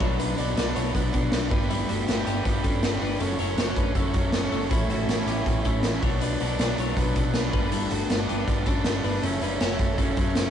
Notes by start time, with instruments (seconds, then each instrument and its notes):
0.00 fingered electric bass B1, overdriven electric guitar B2 F#3 B3 D4 F#4, clean electric guitar F#4 C#5, string machine B4 D5 F#5 D6, kick, open hi-hat, tambourine
0.19 clean electric guitar D4 B4, closed hi-hat, tambourine
0.36 fingered electric bass B1, overdriven electric guitar B2 F#3 B3 D4 F#4, clean electric guitar F#4 D5, closed hi-hat, tambourine
0.57 fingered electric bass B1, clean electric guitar F#4 D5, snare, closed hi-hat, tambourine
0.64 overdriven electric guitar B3 D4 F#4
0.76 fingered electric bass B1, clean electric guitar E4 C#5, closed hi-hat
0.93 fingered electric bass B1, overdriven electric guitar F#3 B3 D4 F#4, clean electric guitar D4 B4, kick, closed hi-hat, tambourine
1.12 fingered electric bass B2, overdriven electric guitar F#3 B3 D4 F#4, kick, closed hi-hat, tambourine
1.32 fingered electric bass B1, snare, closed hi-hat, tambourine
1.41 overdriven electric guitar B3 D4 F#4
1.50 fingered electric bass G1, overdriven electric guitar G3 B3 D4 G4, clean electric guitar D4 B4, kick, open hi-hat, tambourine
1.70 clean electric guitar G3 E4, closed hi-hat, tambourine
1.88 fingered electric bass G1, overdriven electric guitar G3 B3 D4 G4, clean electric guitar A3 F#4, closed hi-hat, tambourine
2.08 fingered electric bass G1, snare, closed hi-hat, tambourine
2.17 overdriven electric guitar B3 D4 G4
2.27 fingered electric bass G1, clean electric guitar B3 G4, closed hi-hat, tambourine
2.44 fingered electric bass G1, overdriven electric guitar G3 B3 D4 G4, kick, closed hi-hat, tambourine
2.64 fingered electric bass G2, overdriven electric guitar G3 B3 D4 G4, clean electric guitar C#4 A4, kick, closed hi-hat, tambourine
2.83 fingered electric bass G1, snare, closed hi-hat, tambourine
2.92 overdriven electric guitar B3 D4 G4
3.01 fingered electric bass G1, clean electric guitar D4 B4, open hi-hat, tambourine
3.20 fingered electric bass F#1, overdriven electric guitar F#3 A3 C#4 F#4, clean electric guitar C#4 A4, string machine A4 C#5 F#5 C#6, closed hi-hat, tambourine
3.39 fingered electric bass F#1, overdriven electric guitar F#3 A3 C#4 F#4, clean electric guitar E4 C#5, closed hi-hat, tambourine
3.57 fingered electric bass F#1, clean electric guitar F#4 C#5, snare, closed hi-hat, tambourine
3.67 overdriven electric guitar A3 C#4 F#4
3.76 fingered electric bass F#1, clean electric guitar D4 B4, kick, closed hi-hat, tambourine
3.95 fingered electric bass F#1, overdriven electric guitar F#3 A3 C#4 F#4, clean electric guitar C#4 A4, kick, closed hi-hat, tambourine
4.13 fingered electric bass F#2, overdriven electric guitar F#3 A3 C#4 F#4, kick, closed hi-hat, tambourine
4.32 fingered electric bass F#1, snare, closed hi-hat, tambourine
4.41 overdriven electric guitar A3 C#4 F#4
4.51 fingered electric bass F#1, clean electric guitar C#4 A4, open hi-hat, tambourine
4.69 fingered electric bass A1, overdriven electric guitar E3 A3 C#4 E4, clean electric guitar A3 E4, string machine E5, kick, closed hi-hat, tambourine
4.88 fingered electric bass A1, overdriven electric guitar A2 E3 A3 C#4 E4, clean electric guitar A3 F#4, closed hi-hat, tambourine
5.08 fingered electric bass A1, snare, closed hi-hat, tambourine
5.17 overdriven electric guitar A3 C#4 E4
5.26 fingered electric bass A1, clean electric guitar B3 G4, closed hi-hat, tambourine
5.45 fingered electric bass A1, overdriven electric guitar E3 A3 C#4 E4, kick, closed hi-hat, tambourine
5.65 fingered electric bass A2, overdriven electric guitar E3 A3 C#4 E4, clean electric guitar C#4 A4, kick, closed hi-hat, tambourine
5.83 fingered electric bass A1, snare, closed hi-hat, tambourine
5.93 overdriven electric guitar A3 C#4 E4
6.02 fingered electric bass B1, overdriven electric guitar B2 F#3 B3 D4, clean electric guitar F#4 C#5, string machine B4 F#5 D6, kick, open hi-hat, tambourine
6.21 clean electric guitar D4 B4, closed hi-hat
6.40 fingered electric bass B1, overdriven electric guitar B2 F#3 B3 D4, clean electric guitar F#4 D5, closed hi-hat, tambourine
6.59 fingered electric bass B1, clean electric guitar F#4 D5, snare, closed hi-hat, tambourine
6.67 overdriven electric guitar F#3 B3 D4
6.78 fingered electric bass B1, clean electric guitar E4 C#5, closed hi-hat, tambourine
6.95 fingered electric bass B1, overdriven electric guitar B2 F#3 B3 D4, clean electric guitar D4 B4, kick, closed hi-hat, tambourine
7.15 overdriven electric guitar B2 F#3 B3 D4, fingered electric bass B2, kick, closed hi-hat, tambourine
7.34 fingered electric bass B1, snare, closed hi-hat, tambourine
7.43 overdriven electric guitar F#3 B3 D4
7.53 fingered electric bass G1, overdriven electric guitar G2 D3 G3 B3 D4, clean electric guitar D4 B4, string machine B4, kick, open hi-hat, tambourine
7.72 clean electric guitar G3 E4, closed hi-hat, tambourine
7.90 fingered electric bass G1, overdriven electric guitar G2 D3 G3 B3 D4, clean electric guitar A3 F#4, closed hi-hat, tambourine
8.10 fingered electric bass G1, snare, closed hi-hat, tambourine
8.18 overdriven electric guitar G3 B3 D4
8.29 fingered electric bass G1, clean electric guitar B3 G4, closed hi-hat, tambourine
8.48 fingered electric bass G1, overdriven electric guitar D3 G3 B3 D4, kick, closed hi-hat, tambourine
8.66 fingered electric bass G2, overdriven electric guitar D3 G3 B3 D4, clean electric guitar C#4 A4, kick, closed hi-hat, tambourine
8.84 fingered electric bass G1, snare, closed hi-hat, tambourine
8.94 overdriven electric guitar G3 B3 D4
9.04 fingered electric bass G1, clean electric guitar D4 B4, open hi-hat, tambourine
9.23 fingered electric bass F#1, overdriven electric guitar C#3 F#3 A3 C#4, clean electric guitar C#4 A4, string machine A4 C#5 F#5 C#6, closed hi-hat
9.41 fingered electric bass F#1, overdriven electric guitar F#2 C#3 F#3 A3 C#4, clean electric guitar D4 B4, closed hi-hat, tambourine
9.60 fingered electric bass F#1, clean electric guitar F#4 C#5, snare, closed hi-hat, tambourine
9.70 overdriven electric guitar F#3 A3 C#4
9.79 fingered electric bass F#1, clean electric guitar C#4 A4, kick, closed hi-hat
9.98 fingered electric bass F#1, overdriven electric guitar C#3 F#3 A3, clean electric guitar C#4 A4, kick, closed hi-hat, tambourine
10.02 overdriven electric guitar C#4
10.17 fingered electric bass F#2, overdriven electric guitar C#3 F#3 A3 C#4, kick, closed hi-hat, tambourine
10.35 fingered electric bass F#1, snare, closed hi-hat, tambourine
10.46 overdriven electric guitar C#4